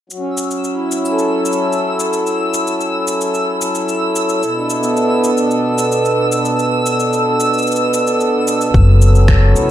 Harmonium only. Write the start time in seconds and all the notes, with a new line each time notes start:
0.09 F#3
0.19 C#4
0.74 E4
1.11 A4
4.41 B2
4.57 D4
4.79 B3
8.74 F#3
9.16 C#4
9.57 E4